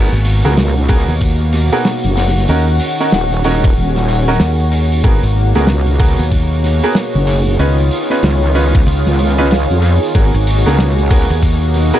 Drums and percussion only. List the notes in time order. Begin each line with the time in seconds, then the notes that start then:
0.12 open hi-hat
0.25 open hi-hat
0.44 snare, open hi-hat
0.46 open hi-hat
0.52 open hi-hat
0.57 snare, open hi-hat
0.77 open hi-hat
0.89 kick, open hi-hat
1.09 open hi-hat
1.21 kick, open hi-hat
1.40 open hi-hat
1.53 snare, open hi-hat
1.72 open hi-hat
1.85 snare, open hi-hat
2.04 open hi-hat
2.17 snare, open hi-hat
2.28 snare
2.36 snare, open hi-hat
2.48 open hi-hat
2.68 open hi-hat
2.70 open hi-hat
2.72 open hi-hat
2.73 open hi-hat
2.75 open hi-hat
2.77 open hi-hat
2.79 open hi-hat
3.00 snare, open hi-hat
3.12 snare, open hi-hat
3.32 open hi-hat
3.44 open hi-hat
3.64 kick, open hi-hat
3.96 snare, open hi-hat
4.08 open hi-hat
4.28 open hi-hat
4.40 snare, open hi-hat
4.60 open hi-hat
4.72 open hi-hat
4.92 open hi-hat
5.04 kick, open hi-hat
5.24 open hi-hat
5.55 snare, open hi-hat
5.67 snare, open hi-hat
5.87 open hi-hat
5.99 kick, open hi-hat
6.19 open hi-hat
6.32 kick, open hi-hat
6.52 open hi-hat
6.64 snare, open hi-hat
6.83 open hi-hat
6.95 snare, open hi-hat
7.15 open hi-hat
7.27 open hi-hat
7.48 open hi-hat
7.59 open hi-hat
7.78 open hi-hat
7.91 open hi-hat
8.10 snare, open hi-hat
8.23 snare, open hi-hat
8.43 open hi-hat
8.55 open hi-hat
8.75 kick, open hi-hat
8.88 open hi-hat
9.06 snare, open hi-hat
9.19 open hi-hat
9.38 open hi-hat
9.51 snare, open hi-hat
9.70 open hi-hat
9.82 open hi-hat
10.03 open hi-hat
10.15 kick, open hi-hat
10.35 open hi-hat
10.47 open hi-hat
10.66 snare, open hi-hat
10.79 snare, open hi-hat
10.98 open hi-hat
11.11 kick, open hi-hat
11.30 open hi-hat
11.42 kick, open hi-hat
11.62 open hi-hat
11.74 snare, open hi-hat
11.93 open hi-hat